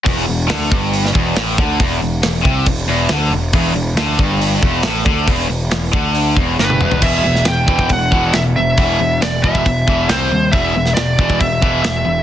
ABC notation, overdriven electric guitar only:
X:1
M:4/4
L:1/8
Q:1/4=138
K:Em
V:1 name="Overdriven electric guitar" clef=bass
E,, E,, D, G,,2 E,, A,, D, | E,, E,, E,, C, E,, E,, D, E,, | E,, E,, D, G,,2 E,, A,, D, | E,, E,, E,, D,2 E,, G,, E,, |
[E,,B,,E,] [E,,B,,] [E,,B,,] [E,,B,,E,] [E,,B,,] [E,,B,,E,] [E,,B,,] [E,,B,,] | [E,,B,,E,] [E,,B,,] [E,,B,,] [E,,B,,E,] [E,,B,,] [E,,B,,E,] [C,G,C] [C,G,] | [E,,B,,E,] [E,,B,,] [E,,B,,] [E,,B,,E,] [E,,B,,] [E,,B,,E,] [E,,B,,] [E,,B,,] |]